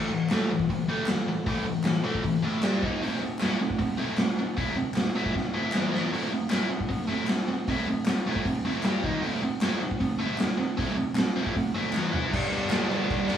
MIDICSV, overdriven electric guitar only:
0, 0, Header, 1, 2, 480
1, 0, Start_track
1, 0, Key_signature, 0, "minor"
1, 0, Tempo, 387847
1, 1817, Time_signature, 4, 2, 24, 8
1, 16554, End_track
2, 0, Start_track
2, 0, Title_t, "Overdriven electric guitar"
2, 0, Program_c, 0, 29
2, 0, Note_on_c, 0, 57, 96
2, 127, Note_off_c, 0, 57, 0
2, 136, Note_on_c, 0, 45, 74
2, 136, Note_on_c, 0, 52, 74
2, 351, Note_off_c, 0, 45, 0
2, 351, Note_off_c, 0, 52, 0
2, 385, Note_on_c, 0, 45, 86
2, 387, Note_on_c, 0, 52, 96
2, 398, Note_on_c, 0, 57, 106
2, 605, Note_off_c, 0, 45, 0
2, 606, Note_off_c, 0, 52, 0
2, 612, Note_off_c, 0, 57, 0
2, 628, Note_on_c, 0, 45, 73
2, 629, Note_on_c, 0, 52, 78
2, 838, Note_off_c, 0, 45, 0
2, 838, Note_off_c, 0, 52, 0
2, 863, Note_on_c, 0, 45, 78
2, 867, Note_on_c, 0, 52, 79
2, 1075, Note_off_c, 0, 45, 0
2, 1077, Note_off_c, 0, 52, 0
2, 1093, Note_on_c, 0, 45, 83
2, 1100, Note_on_c, 0, 52, 85
2, 1107, Note_on_c, 0, 57, 103
2, 1320, Note_off_c, 0, 45, 0
2, 1324, Note_off_c, 0, 52, 0
2, 1327, Note_off_c, 0, 57, 0
2, 1345, Note_on_c, 0, 52, 84
2, 1346, Note_on_c, 0, 45, 69
2, 1557, Note_off_c, 0, 52, 0
2, 1558, Note_off_c, 0, 45, 0
2, 1582, Note_on_c, 0, 45, 77
2, 1590, Note_on_c, 0, 52, 77
2, 1793, Note_off_c, 0, 45, 0
2, 1800, Note_off_c, 0, 52, 0
2, 1808, Note_on_c, 0, 45, 87
2, 1822, Note_on_c, 0, 52, 93
2, 1825, Note_on_c, 0, 57, 98
2, 2034, Note_off_c, 0, 52, 0
2, 2035, Note_off_c, 0, 45, 0
2, 2047, Note_off_c, 0, 57, 0
2, 2049, Note_on_c, 0, 52, 74
2, 2050, Note_on_c, 0, 45, 68
2, 2270, Note_off_c, 0, 52, 0
2, 2271, Note_off_c, 0, 45, 0
2, 2286, Note_on_c, 0, 45, 80
2, 2290, Note_on_c, 0, 52, 83
2, 2505, Note_off_c, 0, 45, 0
2, 2511, Note_off_c, 0, 52, 0
2, 2520, Note_on_c, 0, 45, 85
2, 2526, Note_on_c, 0, 52, 97
2, 2532, Note_on_c, 0, 57, 96
2, 2748, Note_off_c, 0, 45, 0
2, 2748, Note_off_c, 0, 52, 0
2, 2762, Note_off_c, 0, 57, 0
2, 2763, Note_on_c, 0, 45, 79
2, 2763, Note_on_c, 0, 52, 81
2, 2985, Note_off_c, 0, 45, 0
2, 2988, Note_off_c, 0, 52, 0
2, 3000, Note_on_c, 0, 45, 91
2, 3011, Note_on_c, 0, 52, 85
2, 3022, Note_on_c, 0, 57, 101
2, 3236, Note_off_c, 0, 45, 0
2, 3240, Note_off_c, 0, 52, 0
2, 3245, Note_on_c, 0, 55, 95
2, 3247, Note_off_c, 0, 57, 0
2, 3256, Note_on_c, 0, 62, 100
2, 3263, Note_on_c, 0, 67, 97
2, 3479, Note_off_c, 0, 55, 0
2, 3485, Note_off_c, 0, 62, 0
2, 3487, Note_on_c, 0, 51, 86
2, 3488, Note_off_c, 0, 67, 0
2, 3493, Note_on_c, 0, 58, 104
2, 3501, Note_on_c, 0, 63, 109
2, 3720, Note_off_c, 0, 51, 0
2, 3723, Note_off_c, 0, 58, 0
2, 3727, Note_off_c, 0, 63, 0
2, 3737, Note_on_c, 0, 57, 94
2, 3745, Note_on_c, 0, 60, 109
2, 3757, Note_on_c, 0, 64, 96
2, 3965, Note_off_c, 0, 57, 0
2, 3969, Note_off_c, 0, 60, 0
2, 3976, Note_off_c, 0, 64, 0
2, 3985, Note_on_c, 0, 57, 67
2, 3991, Note_on_c, 0, 60, 77
2, 4191, Note_off_c, 0, 57, 0
2, 4203, Note_off_c, 0, 60, 0
2, 4205, Note_on_c, 0, 57, 95
2, 4222, Note_on_c, 0, 60, 93
2, 4228, Note_on_c, 0, 64, 103
2, 4440, Note_off_c, 0, 57, 0
2, 4444, Note_off_c, 0, 60, 0
2, 4451, Note_off_c, 0, 64, 0
2, 4455, Note_on_c, 0, 57, 78
2, 4459, Note_on_c, 0, 60, 76
2, 4672, Note_off_c, 0, 57, 0
2, 4677, Note_off_c, 0, 60, 0
2, 4687, Note_on_c, 0, 57, 76
2, 4690, Note_on_c, 0, 60, 85
2, 4908, Note_off_c, 0, 57, 0
2, 4913, Note_off_c, 0, 60, 0
2, 4922, Note_on_c, 0, 57, 84
2, 4929, Note_on_c, 0, 60, 88
2, 4936, Note_on_c, 0, 64, 94
2, 5159, Note_off_c, 0, 57, 0
2, 5162, Note_off_c, 0, 60, 0
2, 5166, Note_off_c, 0, 64, 0
2, 5182, Note_on_c, 0, 57, 82
2, 5183, Note_on_c, 0, 60, 87
2, 5399, Note_off_c, 0, 57, 0
2, 5399, Note_off_c, 0, 60, 0
2, 5431, Note_on_c, 0, 57, 79
2, 5439, Note_on_c, 0, 60, 80
2, 5636, Note_off_c, 0, 57, 0
2, 5643, Note_off_c, 0, 60, 0
2, 5651, Note_on_c, 0, 57, 95
2, 5658, Note_on_c, 0, 60, 85
2, 5668, Note_on_c, 0, 64, 103
2, 5876, Note_off_c, 0, 57, 0
2, 5877, Note_off_c, 0, 60, 0
2, 5891, Note_on_c, 0, 57, 69
2, 5891, Note_on_c, 0, 60, 88
2, 5892, Note_off_c, 0, 64, 0
2, 6114, Note_off_c, 0, 57, 0
2, 6114, Note_off_c, 0, 60, 0
2, 6132, Note_on_c, 0, 60, 80
2, 6136, Note_on_c, 0, 57, 84
2, 6354, Note_off_c, 0, 60, 0
2, 6356, Note_off_c, 0, 57, 0
2, 6381, Note_on_c, 0, 57, 85
2, 6391, Note_on_c, 0, 60, 96
2, 6398, Note_on_c, 0, 64, 104
2, 6596, Note_off_c, 0, 60, 0
2, 6597, Note_off_c, 0, 57, 0
2, 6611, Note_on_c, 0, 60, 84
2, 6612, Note_on_c, 0, 57, 75
2, 6617, Note_off_c, 0, 64, 0
2, 6834, Note_off_c, 0, 57, 0
2, 6834, Note_off_c, 0, 60, 0
2, 6852, Note_on_c, 0, 57, 93
2, 6861, Note_on_c, 0, 60, 89
2, 6866, Note_on_c, 0, 64, 97
2, 7084, Note_off_c, 0, 57, 0
2, 7087, Note_on_c, 0, 52, 92
2, 7088, Note_off_c, 0, 60, 0
2, 7088, Note_off_c, 0, 64, 0
2, 7096, Note_on_c, 0, 59, 95
2, 7103, Note_on_c, 0, 64, 97
2, 7310, Note_off_c, 0, 52, 0
2, 7321, Note_off_c, 0, 59, 0
2, 7325, Note_on_c, 0, 52, 97
2, 7329, Note_off_c, 0, 64, 0
2, 7336, Note_on_c, 0, 59, 91
2, 7342, Note_on_c, 0, 64, 105
2, 7561, Note_off_c, 0, 52, 0
2, 7566, Note_off_c, 0, 59, 0
2, 7569, Note_off_c, 0, 64, 0
2, 7575, Note_on_c, 0, 57, 92
2, 7583, Note_on_c, 0, 60, 96
2, 7592, Note_on_c, 0, 64, 97
2, 7805, Note_off_c, 0, 57, 0
2, 7810, Note_off_c, 0, 60, 0
2, 7814, Note_off_c, 0, 64, 0
2, 7820, Note_on_c, 0, 57, 72
2, 7824, Note_on_c, 0, 60, 78
2, 8023, Note_off_c, 0, 57, 0
2, 8036, Note_off_c, 0, 60, 0
2, 8037, Note_on_c, 0, 57, 92
2, 8050, Note_on_c, 0, 64, 104
2, 8051, Note_on_c, 0, 60, 90
2, 8265, Note_off_c, 0, 57, 0
2, 8273, Note_off_c, 0, 60, 0
2, 8280, Note_on_c, 0, 57, 73
2, 8283, Note_off_c, 0, 64, 0
2, 8288, Note_on_c, 0, 60, 77
2, 8509, Note_off_c, 0, 57, 0
2, 8512, Note_off_c, 0, 60, 0
2, 8522, Note_on_c, 0, 57, 80
2, 8528, Note_on_c, 0, 60, 84
2, 8742, Note_off_c, 0, 57, 0
2, 8752, Note_off_c, 0, 60, 0
2, 8757, Note_on_c, 0, 57, 89
2, 8770, Note_on_c, 0, 60, 80
2, 8774, Note_on_c, 0, 64, 90
2, 8996, Note_off_c, 0, 57, 0
2, 9003, Note_off_c, 0, 60, 0
2, 9005, Note_off_c, 0, 64, 0
2, 9021, Note_on_c, 0, 57, 76
2, 9027, Note_on_c, 0, 60, 86
2, 9239, Note_off_c, 0, 57, 0
2, 9242, Note_off_c, 0, 60, 0
2, 9262, Note_on_c, 0, 57, 69
2, 9269, Note_on_c, 0, 60, 82
2, 9479, Note_off_c, 0, 57, 0
2, 9483, Note_off_c, 0, 60, 0
2, 9510, Note_on_c, 0, 57, 91
2, 9512, Note_on_c, 0, 60, 96
2, 9531, Note_on_c, 0, 64, 106
2, 9733, Note_off_c, 0, 57, 0
2, 9734, Note_off_c, 0, 60, 0
2, 9744, Note_off_c, 0, 64, 0
2, 9749, Note_on_c, 0, 57, 70
2, 9759, Note_on_c, 0, 60, 78
2, 9963, Note_off_c, 0, 57, 0
2, 9968, Note_off_c, 0, 60, 0
2, 9985, Note_on_c, 0, 57, 69
2, 9998, Note_on_c, 0, 60, 88
2, 10201, Note_off_c, 0, 57, 0
2, 10207, Note_off_c, 0, 60, 0
2, 10234, Note_on_c, 0, 57, 87
2, 10246, Note_on_c, 0, 60, 89
2, 10250, Note_on_c, 0, 64, 92
2, 10452, Note_off_c, 0, 57, 0
2, 10453, Note_off_c, 0, 60, 0
2, 10463, Note_off_c, 0, 64, 0
2, 10467, Note_on_c, 0, 57, 85
2, 10468, Note_on_c, 0, 60, 89
2, 10682, Note_off_c, 0, 57, 0
2, 10682, Note_off_c, 0, 60, 0
2, 10702, Note_on_c, 0, 57, 87
2, 10710, Note_on_c, 0, 60, 97
2, 10717, Note_on_c, 0, 64, 101
2, 10929, Note_off_c, 0, 57, 0
2, 10933, Note_off_c, 0, 60, 0
2, 10936, Note_off_c, 0, 64, 0
2, 10948, Note_on_c, 0, 55, 92
2, 10957, Note_on_c, 0, 62, 101
2, 10967, Note_on_c, 0, 67, 99
2, 11172, Note_off_c, 0, 55, 0
2, 11176, Note_on_c, 0, 51, 104
2, 11176, Note_on_c, 0, 58, 94
2, 11177, Note_off_c, 0, 62, 0
2, 11182, Note_off_c, 0, 67, 0
2, 11186, Note_on_c, 0, 63, 113
2, 11406, Note_off_c, 0, 51, 0
2, 11406, Note_off_c, 0, 58, 0
2, 11410, Note_on_c, 0, 57, 93
2, 11411, Note_off_c, 0, 63, 0
2, 11418, Note_on_c, 0, 60, 96
2, 11427, Note_on_c, 0, 64, 102
2, 11643, Note_off_c, 0, 57, 0
2, 11647, Note_off_c, 0, 60, 0
2, 11651, Note_off_c, 0, 64, 0
2, 11665, Note_on_c, 0, 57, 77
2, 11674, Note_on_c, 0, 60, 87
2, 11881, Note_off_c, 0, 57, 0
2, 11886, Note_off_c, 0, 60, 0
2, 11903, Note_on_c, 0, 57, 92
2, 11910, Note_on_c, 0, 60, 95
2, 11919, Note_on_c, 0, 64, 110
2, 12130, Note_off_c, 0, 57, 0
2, 12133, Note_off_c, 0, 60, 0
2, 12138, Note_off_c, 0, 64, 0
2, 12146, Note_on_c, 0, 57, 81
2, 12150, Note_on_c, 0, 60, 85
2, 12362, Note_off_c, 0, 57, 0
2, 12363, Note_off_c, 0, 60, 0
2, 12379, Note_on_c, 0, 57, 81
2, 12380, Note_on_c, 0, 60, 94
2, 12591, Note_off_c, 0, 57, 0
2, 12599, Note_off_c, 0, 60, 0
2, 12606, Note_on_c, 0, 57, 83
2, 12620, Note_on_c, 0, 60, 94
2, 12630, Note_on_c, 0, 64, 99
2, 12830, Note_off_c, 0, 57, 0
2, 12838, Note_off_c, 0, 60, 0
2, 12845, Note_on_c, 0, 57, 86
2, 12853, Note_off_c, 0, 64, 0
2, 12853, Note_on_c, 0, 60, 91
2, 13070, Note_off_c, 0, 57, 0
2, 13075, Note_off_c, 0, 60, 0
2, 13086, Note_on_c, 0, 57, 70
2, 13095, Note_on_c, 0, 60, 82
2, 13311, Note_off_c, 0, 57, 0
2, 13315, Note_off_c, 0, 60, 0
2, 13331, Note_on_c, 0, 57, 86
2, 13344, Note_on_c, 0, 60, 90
2, 13346, Note_on_c, 0, 64, 100
2, 13554, Note_off_c, 0, 60, 0
2, 13556, Note_off_c, 0, 57, 0
2, 13569, Note_on_c, 0, 60, 78
2, 13570, Note_off_c, 0, 64, 0
2, 13571, Note_on_c, 0, 57, 71
2, 13786, Note_off_c, 0, 57, 0
2, 13792, Note_off_c, 0, 60, 0
2, 13801, Note_on_c, 0, 57, 85
2, 13817, Note_on_c, 0, 60, 82
2, 14028, Note_off_c, 0, 57, 0
2, 14036, Note_off_c, 0, 60, 0
2, 14059, Note_on_c, 0, 57, 89
2, 14064, Note_on_c, 0, 60, 100
2, 14074, Note_on_c, 0, 64, 93
2, 14277, Note_off_c, 0, 57, 0
2, 14282, Note_off_c, 0, 60, 0
2, 14292, Note_on_c, 0, 57, 75
2, 14294, Note_off_c, 0, 64, 0
2, 14297, Note_on_c, 0, 60, 80
2, 14513, Note_off_c, 0, 57, 0
2, 14516, Note_off_c, 0, 60, 0
2, 14537, Note_on_c, 0, 57, 81
2, 14547, Note_on_c, 0, 60, 91
2, 14557, Note_on_c, 0, 64, 97
2, 14765, Note_off_c, 0, 57, 0
2, 14766, Note_on_c, 0, 52, 89
2, 14768, Note_off_c, 0, 64, 0
2, 14770, Note_off_c, 0, 60, 0
2, 14776, Note_on_c, 0, 59, 88
2, 14783, Note_on_c, 0, 64, 92
2, 14987, Note_off_c, 0, 52, 0
2, 14987, Note_off_c, 0, 59, 0
2, 14997, Note_off_c, 0, 64, 0
2, 15001, Note_on_c, 0, 59, 93
2, 15002, Note_on_c, 0, 52, 89
2, 15011, Note_on_c, 0, 64, 110
2, 15225, Note_off_c, 0, 52, 0
2, 15230, Note_on_c, 0, 43, 97
2, 15236, Note_off_c, 0, 59, 0
2, 15241, Note_off_c, 0, 64, 0
2, 15241, Note_on_c, 0, 50, 88
2, 15254, Note_on_c, 0, 55, 100
2, 15262, Note_on_c, 0, 59, 99
2, 15269, Note_on_c, 0, 62, 104
2, 15463, Note_off_c, 0, 62, 0
2, 15468, Note_on_c, 0, 62, 68
2, 15483, Note_off_c, 0, 59, 0
2, 15488, Note_on_c, 0, 59, 59
2, 15502, Note_off_c, 0, 55, 0
2, 15507, Note_on_c, 0, 55, 62
2, 15701, Note_off_c, 0, 43, 0
2, 15702, Note_off_c, 0, 50, 0
2, 15706, Note_on_c, 0, 43, 97
2, 15714, Note_off_c, 0, 55, 0
2, 15717, Note_on_c, 0, 50, 99
2, 15719, Note_on_c, 0, 55, 99
2, 15728, Note_off_c, 0, 59, 0
2, 15728, Note_off_c, 0, 62, 0
2, 15733, Note_on_c, 0, 59, 114
2, 15733, Note_on_c, 0, 62, 100
2, 15947, Note_off_c, 0, 62, 0
2, 15952, Note_on_c, 0, 62, 80
2, 15975, Note_off_c, 0, 59, 0
2, 15980, Note_on_c, 0, 59, 73
2, 15989, Note_off_c, 0, 55, 0
2, 15994, Note_on_c, 0, 55, 68
2, 16206, Note_off_c, 0, 50, 0
2, 16428, Note_off_c, 0, 62, 0
2, 16433, Note_on_c, 0, 62, 67
2, 16441, Note_off_c, 0, 59, 0
2, 16456, Note_off_c, 0, 55, 0
2, 16456, Note_on_c, 0, 59, 65
2, 16470, Note_on_c, 0, 55, 59
2, 16554, Note_off_c, 0, 43, 0
2, 16554, Note_off_c, 0, 55, 0
2, 16554, Note_off_c, 0, 59, 0
2, 16554, Note_off_c, 0, 62, 0
2, 16554, End_track
0, 0, End_of_file